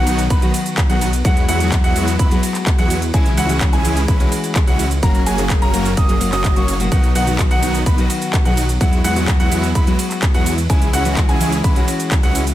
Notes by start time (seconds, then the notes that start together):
Already playing: B1 D#3 F#3 B3 D#4 F#4 F#5
0.06 D#3 F#3 B3 D#4, open hi-hat, ride, shaker
0.19 closed hi-hat, shaker
0.30 B1 D#3 F#3 B3 D#4 B4 B5, kick, closed hi-hat, ride, shaker
0.42 D#3 F#3 B3 F#4, closed hi-hat, shaker
0.54 open hi-hat, ride, shaker
0.66 closed hi-hat, shaker
0.78 kick, clap, closed hi-hat, ride, shaker
0.89 B1 D#3 F#3 B3 D#4 F#4 G#4 F#5, closed hi-hat, shaker
1.01 open hi-hat, ride, shaker
1.13 closed hi-hat, shaker
1.24 E2 F#3 G#3 B3 E4 F#4 F#5, kick, closed hi-hat, ride, shaker
1.37 closed hi-hat, shaker
1.48 E2 F#3 G#3 B3 E4 F#4 F#5, open hi-hat, ride, shaker
1.60 F#3 G#3 B3 F#4, closed hi-hat, shaker
1.72 kick, clap, closed hi-hat, ride, shaker
1.84 E2 F#3 G#3 B3 E4 F#4 F#5, closed hi-hat, shaker
1.95 F#3 G#3 B3 E4, open hi-hat, ride, shaker
2.08 closed hi-hat, shaker
2.19 E2 F#3 G#3 B3 E4 B4 B5, kick, closed hi-hat, ride, shaker
2.30 F#3 G#3 B3 F#4, closed hi-hat, shaker
2.43 open hi-hat, ride, shaker
2.55 clap, closed hi-hat, shaker
2.67 kick, clap, closed hi-hat, ride, shaker
2.78 E2 F#3 G#3 B3 E4 F#4 G#4 F#5, closed hi-hat, shaker
2.90 open hi-hat, ride, shaker
3.02 closed hi-hat, shaker
3.13 C#2 E3 G#3 C#4 E4 G#4 G#5, kick, closed hi-hat, ride, shaker
3.26 closed hi-hat, shaker
3.37 C#2 E3 G#3 C#4 E4 F#4 F#5, open hi-hat, ride, shaker
3.49 E3 G#3 C#4 F#4, closed hi-hat, shaker
3.61 kick, clap, closed hi-hat, ride, shaker
3.73 C#2 E3 G#3 C#4 E4 G#4 G#5, closed hi-hat, shaker
3.84 E3 G#3 C#4 E4, open hi-hat, ride, shaker
3.97 closed hi-hat, shaker
4.08 C#2 E3 G#3 C#4 E4 B4 B5, kick, closed hi-hat, ride, shaker
4.20 E3 G#3 C#4 F#4, closed hi-hat, shaker
4.32 open hi-hat, ride, shaker
4.44 closed hi-hat, shaker
4.55 kick, clap, closed hi-hat, ride, shaker
4.67 C#2 E3 G#3 C#4 E4 F#4 G#4 F#5, closed hi-hat, shaker
4.79 open hi-hat, ride, shaker
4.91 closed hi-hat, shaker
5.02 F#1 F#3 A#3 C#4 F#4 A#4 A#5, kick, closed hi-hat, ride, shaker
5.15 closed hi-hat, shaker
5.26 F#1 F#3 A#3 C#4 F#4 G#4 G#5, open hi-hat, ride, shaker
5.38 F#3 A#3 C#4 G#4, closed hi-hat, shaker
5.50 kick, clap, closed hi-hat, ride, shaker
5.62 F#1 F#3 A#3 C#4 F#4 A#4 A#5, closed hi-hat, shaker
5.73 F#3 A#3 C#4 F#4, open hi-hat, ride, shaker
5.85 closed hi-hat, shaker
5.97 F#1 F#3 A#3 C#4 F#4 D#5 D#6, kick, closed hi-hat, ride, shaker
6.08 F#3 A#3 C#4 G#4, closed hi-hat, shaker
6.20 F#3 A#3 C#4 F#4, open hi-hat, ride, shaker
6.32 F#1 F#3 A#3 C#4 F#4 D#5 D#6, clap, closed hi-hat, shaker
6.44 kick, clap, closed hi-hat, ride, shaker
6.56 F#1 F#3 A#3 C#4 F#4 C#5 C#6, closed hi-hat, shaker
6.68 open hi-hat, ride, shaker
6.79 B2 F#3 A#3 C#4 F#4, closed hi-hat, shaker
6.91 B1 D#3 F#3 B3 D#4 F#4 F#5, kick, closed hi-hat, ride, shaker
7.04 closed hi-hat, shaker
7.15 B1 D#3 F#3 B3 D#4 F#4 F#5, open hi-hat, ride, shaker
7.27 D#3 F#3 B3 F#4, closed hi-hat, shaker
7.39 kick, clap, closed hi-hat, ride, shaker
7.51 B1 D#3 F#3 B3 D#4 F#4 F#5, closed hi-hat, shaker
7.62 D#3 F#3 B3 D#4, open hi-hat, ride, shaker
7.74 closed hi-hat, shaker
7.86 B1 D#3 F#3 B3 D#4 B4 B5, kick, closed hi-hat, ride, shaker
7.98 D#3 F#3 B3 F#4, closed hi-hat, shaker
8.10 open hi-hat, ride, shaker
8.22 closed hi-hat, shaker
8.33 kick, clap, closed hi-hat, ride, shaker
8.45 B1 D#3 F#3 B3 D#4 F#4 G#4 F#5, closed hi-hat, shaker
8.57 open hi-hat, ride, shaker
8.69 closed hi-hat, shaker
8.80 E2 F#3 G#3 B3 E4 F#4 F#5, kick, closed hi-hat, ride, shaker
8.93 closed hi-hat, shaker
9.04 E2 F#3 G#3 B3 E4 F#4 F#5, open hi-hat, ride, shaker
9.15 F#3 G#3 B3 F#4, closed hi-hat, shaker
9.28 kick, clap, closed hi-hat, ride, shaker
9.40 E2 F#3 G#3 B3 E4 F#4 F#5, closed hi-hat, shaker
9.51 F#3 G#3 B3 E4, open hi-hat, ride, shaker
9.63 closed hi-hat, shaker
9.75 E2 F#3 G#3 B3 E4 B4 B5, kick, closed hi-hat, ride, shaker
9.86 F#3 G#3 B3 F#4, closed hi-hat, shaker
9.99 open hi-hat, ride, shaker
10.11 clap, closed hi-hat, shaker
10.22 kick, clap, closed hi-hat, ride, shaker
10.34 E2 F#3 G#3 B3 E4 F#4 G#4 F#5, closed hi-hat, shaker
10.46 open hi-hat, ride, shaker
10.58 closed hi-hat, shaker
10.69 C#2 E3 G#3 C#4 E4 G#4 G#5, kick, closed hi-hat, ride, shaker
10.82 closed hi-hat, shaker
10.93 C#2 E3 G#3 C#4 E4 F#4 F#5, open hi-hat, ride, shaker
11.05 E3 G#3 C#4 F#4, closed hi-hat, shaker
11.17 kick, clap, closed hi-hat, ride, shaker
11.29 C#2 E3 G#3 C#4 E4 G#4 G#5, closed hi-hat, shaker
11.40 E3 G#3 C#4 E4, open hi-hat, ride, shaker
11.52 closed hi-hat, shaker
11.64 C#2 E3 G#3 C#4 E4 B4 B5, kick, closed hi-hat, ride, shaker
11.75 E3 G#3 C#4 F#4, closed hi-hat, shaker
11.88 open hi-hat, ride, shaker
12.00 closed hi-hat, shaker
12.11 kick, clap, closed hi-hat, ride, shaker
12.23 C#2 E3 G#3 C#4 E4 F#4 G#4 F#5, closed hi-hat, shaker
12.35 open hi-hat, ride, shaker
12.47 closed hi-hat, shaker